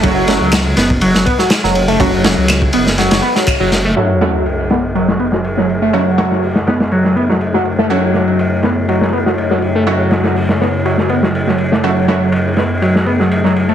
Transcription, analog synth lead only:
X:1
M:4/4
L:1/16
Q:"Swing 16ths" 1/4=122
K:F#m
V:1 name="Analog synth lead" clef=bass
F,4 z2 B, z F, F, B, F, z F, z A, | F,4 z2 B, z F, F, B, F, z F, z A, | F,4 z2 B, z F, F, B, F, z F, z A, | F,4 z2 B, z F, F, B, F, z F, z A, |
F,4 z2 B, z F, F, B, F, z F, z A, | F,4 z2 B, z F, F, B, F, z F, z A, | F,4 z2 B, z F, F, B, F, z F, z A, |]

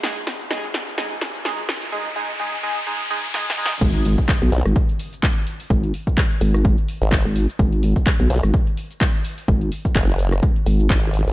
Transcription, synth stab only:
X:1
M:4/4
L:1/8
Q:"Swing 16ths" 1/4=127
K:G#m
V:1 name="Synth stab"
[G,DG] z [G,DG] z [G,DG] z [G,DG] z | [G,DG] [G,DG] [G,DG] [G,DG] [G,DG] [G,DG] [G,DG] [G,DG] | z8 | z8 |
z8 | z8 |]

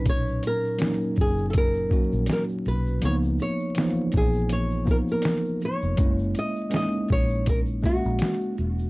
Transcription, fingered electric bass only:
X:1
M:4/4
L:1/16
Q:"Swing 16ths" 1/4=81
K:B
V:1 name="Fingered electric bass" clef=bass
B,,,2 z4 F,,,4- F,,, A,,, z2 B,,,2 | C,,2 z4 A,,,4- A,,, z4 ^E,,, | F,,,2 z4 A,,,4- A,,, A,,, z2 E,,,2 |]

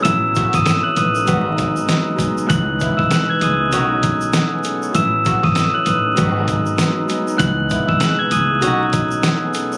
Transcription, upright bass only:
X:1
M:4/4
L:1/16
Q:"Swing 16ths" 1/4=98
K:C#m
V:1 name="Upright bass" clef=bass
A,,,3 G,,, z2 A,,,2 G,,,4 z4 | C,,3 B,,, z2 C,,2 B,,,4 z4 | A,,,3 G,,, z2 A,,,2 G,,,4 z4 | C,,3 B,,, z2 C,,2 B,,,4 z4 |]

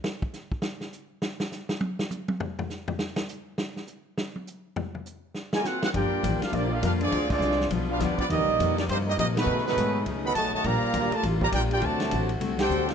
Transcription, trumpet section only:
X:1
M:4/4
L:1/8
Q:"Swing" 1/4=204
K:Gm
V:1 name="Trumpet section"
z8 | z8 | z8 | z8 |
z4 z [^E^Ad_a] [CE^A^f] [CEAf] | [FBdg]3 [DGBf] [B,FGd] [DGBf] [DGBf] [CF_Ad]- | [CF_Ad] [CFAd]3 z [DG=Bf] [=B,FGd] [B,FGd] | [B,Gde]3 [B,EGd] [B,EGc] [B,DGe] [B,DGe] [A,E^F=B]- |
[A,E^F=B] [A,^DFB]3 z [A^d^f=b] [F^cda] [Fcda] | [Gdfb]3 [FBda] z [Gdfb] [FBdg] [FBdg] | [^Fcda]3 z2 [DAcg]2 z |]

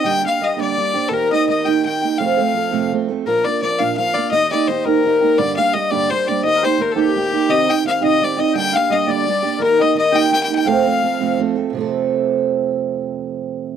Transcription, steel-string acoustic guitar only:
X:1
M:6/8
L:1/8
Q:3/8=114
K:Fmix
V:1 name="Steel-string acoustic guitar"
[D,G,B,DG] [B,DG] [G,B,DG] [D,G,B,DG] [G,B,G] [B,DG] | [E,B,EG] [B,EG] [E,B,EG] [E,B,EG] [E,B,EG] [B,EG] | [F,,C,F,A,CA] [F,A,CA] [F,A,CA] [F,,C,F,A,CA] [F,A,CA] [F,A,CA] | [B,,F,B,DF] [B,DF] [F,B,DF] [B,,F,B,DF] [F,B,DF] [B,D] |
[E,B,EG] [B,EG] [E,B,EG] [E,B,EG] [E,B,EG] [B,EG] | [G,,D,G,B,DG] [G,B,DG] [G,B,DG] [G,,D,G,B,DG] [G,B,] [G,B,DG] | [E,B,EG] [B,EG] [E,B,EG] [E,B,EG] [E,B,EG] [B,EG] | [C,E,CE] [CEG] [E,CEG] [C,E,CEG] [E,CE] [CEG] |
[D,G,B,DG] [B,DG] [G,B,DG] [D,G,B,DG] [G,B,DG] [B,DG] | [E,B,EG] [B,EG] [E,B,EG] [E,B,EG] [E,B,EG] [B,EG] | [F,,C,F,A,CA] [F,A,CA] [F,A,CA] [F,,C,F,A,CA] [F,A,CA] [F,A,CA] | [F,,C,F,A,CA]6- |
[F,,C,F,A,CA]6 |]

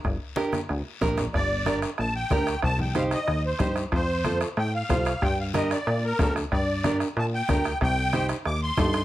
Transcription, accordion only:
X:1
M:4/4
L:1/8
Q:1/4=186
K:Gm
V:1 name="Accordion"
z8 | d3 z a g3 | a g f e2 c2 z | c3 z g f3 |
g f e d2 B2 z | d3 z a g3 | g3 z d' c'3 |]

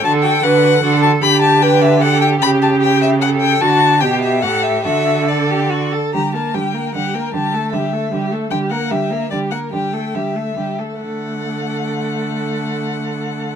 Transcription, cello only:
X:1
M:3/4
L:1/8
Q:1/4=148
K:D
V:1 name="Cello" clef=bass
D,2 D,2 D,2 | D,6 | C,6 | D,2 B,,2 A,,2 |
D,4- D, z | D,2 D,2 D,2 | D,2 D,2 D,2 | D,2 D,2 D,2 |
D,2 D,2 D,2 | D,6- | D,6 |]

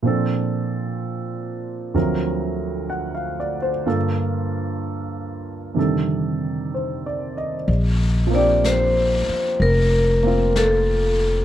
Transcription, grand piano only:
X:1
M:4/4
L:1/16
Q:"Swing" 1/4=63
K:Bb
V:1 name="Grand piano"
z12 ^f ^e d c | z12 (3c2 d2 e2- | e z12 z3 |]
V:2 name="Grand piano"
[B,,F,CDA]8 [D,,D,^E,^F,C^A]8 | [G,,D,B,FA]8 [F,,C,D,E,G,A]8 | z2 [F,B,CDG]8 [B,CF]6 |]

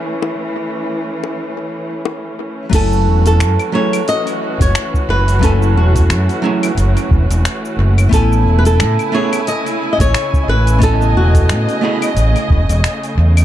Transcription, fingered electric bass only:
X:1
M:4/4
L:1/16
Q:"Swing 16ths" 1/4=89
K:F#dor
V:1 name="Fingered electric bass" clef=bass
z16 | F,,,2 E,,,2 F,, z6 F,,, z2 F,,,2- | F,,,2 E,,,2 F,, z3 F,,, z E,,, E,,, z2 F,,,2 | A,,,2 E,,,2 A,, z6 A,,, z2 A,,,2- |
A,,,2 E,,,2 A,, z3 A,,, z E,,, E,,, z2 E,,2 |]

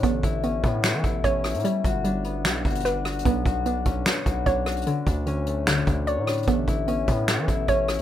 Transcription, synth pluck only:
X:1
M:4/4
L:1/8
Q:1/4=149
K:Amix
V:1 name="Synth pluck"
B,2 B,4 c2 | G,2 G,4 B2 | B,2 B,4 c2 | D,2 D,4 d2 |
B,2 B,4 c2 |]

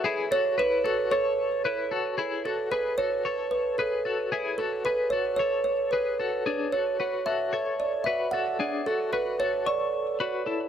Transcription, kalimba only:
X:1
M:4/4
L:1/16
Q:1/4=112
K:A
V:1 name="Kalimba"
z2 c2 B2 A2 c6 z2 | z2 A2 B2 c4 B2 A3 z | z2 A2 B2 c2 c2 c2 B3 z | z2 c4 e2 z2 d2 e2 f2 |
z2 A2 B2 c2 d4 z4 |]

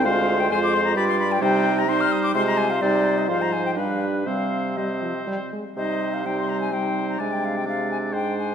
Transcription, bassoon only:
X:1
M:3/4
L:1/8
Q:1/4=128
K:Cm
V:1 name="Bassoon" clef=bass
D,,2 F,,2 G,,2 | C,3 z C,2 | C,2 A,,2 G,,2 | C,4- C, z |
C,6 | C,4 A,,2 |]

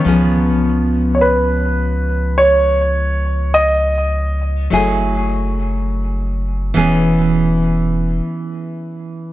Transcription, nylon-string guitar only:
X:1
M:4/4
L:1/8
Q:"Swing 16ths" 1/4=103
K:C#m
V:1 name="Nylon-string guitar"
[^E,B,CG]8- | [^E,B,CG]8 | [F,A,EG]6- [F,A,EG] [E,B,CG]- | [E,B,CG]8 |]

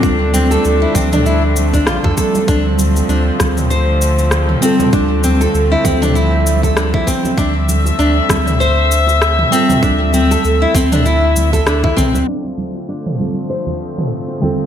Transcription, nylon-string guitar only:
X:1
M:4/4
L:1/16
Q:"Swing 16ths" 1/4=98
K:Dm
V:1 name="Nylon-string guitar"
D2 C A z E C D E z2 D F A A z | D z3 D z3 c4 z2 C2 | D2 C A z E C D E3 A D E C2 | D z3 D z3 c4 z2 C2 |
D2 C A z E C D E3 A D E C2 | D z3 D z3 c4 z2 C2 |]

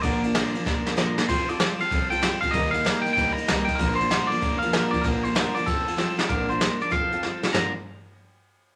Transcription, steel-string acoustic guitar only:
X:1
M:4/4
L:1/8
Q:"Swing" 1/4=192
K:Bb
V:1 name="Steel-string acoustic guitar"
[B,,D,F,B,DB] [F,B,DB] [B,,D,F,B,DB] [F,B,DB] [F,B,DB] [F,B,DB] [B,,D,F,B,DB] [F,B,DB] | [F,CFA] [CFA] [F,CFA] [CFA] [F,CFA] [CFA] [F,CFA] [CFA] | [E,G,B,EB] [B,EB] [E,G,B,EB] [B,EB] [G,B,EB] [B,EB] [E,G,B,EB] [B,EB] | [B,,D,F,B,DB] [F,B,DB] [B,,D,F,B,DB] [F,B,DB] [F,B,DB] [F,B,DB] [B,,D,F,B,DB] [F,B,DB] |
[B,,D,F,B,DB] [F,B,DB] [B,,D,F,B,DB] [F,B,DB] [F,CFA] [CFA] [F,CFA] [CFA] | [B,,D,F,B,DB] [F,B,DB] [F,B,DB] [F,B,DB] [F,CFA] [CFA] [F,CFA] [CFA] | [B,,D,F,B,DB] z6 z |]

